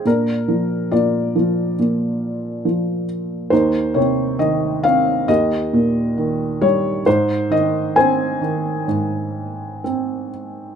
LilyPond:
<<
  \new Staff \with { instrumentName = "Felt piano" } { \time 4/4 \key aes \major \tempo 4 = 68 << { bes'4 d''2~ d''8 r8 | c''8 des''8 ees''8 f''8 ees''4. des''8 | c''8 ees''8 aes''2 r4 | } \\ { d'4 f'2~ f'8 r8 | ees'2 g'2 | ees'4 c''2 r4 | } >> }
  \new Staff \with { instrumentName = "Felt piano" } { \clef bass \time 4/4 \key aes \major bes,8 f8 bes,8 f8 bes,4 f4 | ees,8 c8 ees8 c'8 ees,8 bes,8 ees8 g8 | aes,8 ees8 c'8 ees8 aes,4 c'4 | }
>>